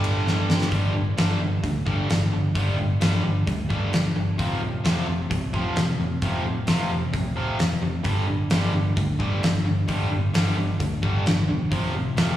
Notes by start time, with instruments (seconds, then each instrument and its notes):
Already playing: picked electric bass G1, overdriven electric guitar G2 D3 G3
0.04 ride
0.27 snare
0.50 snare
0.61 snare
0.71 picked electric bass G1, overdriven electric guitar G2 D3 G3, kick, open hi-hat
0.94 picked electric bass G1, overdriven electric guitar G2 D3
1.17 picked electric bass G1, overdriven electric guitar G2 D3 G3, snare, open hi-hat
1.41 picked electric bass G1, overdriven electric guitar G2 D3
1.63 picked electric bass D2, overdriven electric guitar G2 D3, kick, open hi-hat
1.86 picked electric bass G1, overdriven electric guitar G2 D3 G3, kick
2.09 picked electric bass G1, overdriven electric guitar G2 D3, snare, open hi-hat
2.32 picked electric bass G1, overdriven electric guitar G2 D3
2.55 picked electric bass G1, overdriven electric guitar G2 D3 G3, kick, open hi-hat
2.78 picked electric bass G1, overdriven electric guitar G2 D3
3.00 picked electric bass G1, overdriven electric guitar G2 D3 G3, snare, open hi-hat
3.24 picked electric bass G1, overdriven electric guitar G2 D3
3.47 picked electric bass D2, overdriven electric guitar G2 D3, kick, open hi-hat
3.69 picked electric bass G1, overdriven electric guitar G2 D3 G3, kick
3.92 picked electric bass G1, overdriven electric guitar G2 D3, snare, open hi-hat
4.16 picked electric bass G1, overdriven electric guitar G2 D3
4.38 picked electric bass F1, overdriven electric guitar F2 C3 F3, kick, open hi-hat
4.61 picked electric bass F1, overdriven electric guitar F2 C3
4.84 picked electric bass F1, overdriven electric guitar F2 C3 F3, snare, open hi-hat
5.07 picked electric bass F1, overdriven electric guitar F2 C3
5.30 picked electric bass C2, overdriven electric guitar F2 C3, kick, open hi-hat
5.53 picked electric bass F1, overdriven electric guitar F2 C3 F3, kick
5.76 picked electric bass F1, overdriven electric guitar F2 C3, snare, open hi-hat
5.99 picked electric bass F1, overdriven electric guitar F2 C3
6.22 picked electric bass F1, overdriven electric guitar F2 C3 F3, kick, open hi-hat
6.45 picked electric bass F1, overdriven electric guitar F2 C3
6.67 picked electric bass F1, overdriven electric guitar F2 C3 F3, snare, open hi-hat
6.90 picked electric bass F1, overdriven electric guitar F2 C3
7.13 picked electric bass C2, overdriven electric guitar F2 C3, kick, open hi-hat
7.36 picked electric bass F1, overdriven electric guitar F2 C3 F3
7.59 picked electric bass F1, overdriven electric guitar F2 C3, snare, open hi-hat
7.82 picked electric bass F1, overdriven electric guitar F2 C3
8.04 picked electric bass G1, overdriven electric guitar G2 D3 G3, kick, open hi-hat
8.27 picked electric bass G1, overdriven electric guitar G2 D3
8.50 picked electric bass G1, overdriven electric guitar G2 D3 G3, snare, open hi-hat
8.74 picked electric bass G1, overdriven electric guitar G2 D3
8.96 picked electric bass D2, overdriven electric guitar G2 D3, kick, open hi-hat
9.19 picked electric bass G1, overdriven electric guitar G2 D3 G3, kick
9.41 picked electric bass G1, overdriven electric guitar G2 D3, snare, open hi-hat
9.65 picked electric bass G1, overdriven electric guitar G2 D3
9.88 picked electric bass G1, overdriven electric guitar G2 D3 G3, kick, open hi-hat
10.11 picked electric bass G1, overdriven electric guitar G2 D3
10.33 picked electric bass G1, overdriven electric guitar G2 D3 G3, snare, open hi-hat
10.57 picked electric bass G1, overdriven electric guitar G2 D3
10.79 picked electric bass D2, overdriven electric guitar G2 D3, kick, open hi-hat
11.02 picked electric bass G1, overdriven electric guitar G2 D3 G3, kick
11.26 picked electric bass G1, overdriven electric guitar G2 D3, snare, open hi-hat
11.48 picked electric bass E1, overdriven electric guitar G2 D3
11.71 picked electric bass F1, overdriven electric guitar F2 C3 F3, kick, open hi-hat
11.94 picked electric bass F1, overdriven electric guitar F2 C3
12.16 picked electric bass F1, overdriven electric guitar F2 C3 F3, snare, open hi-hat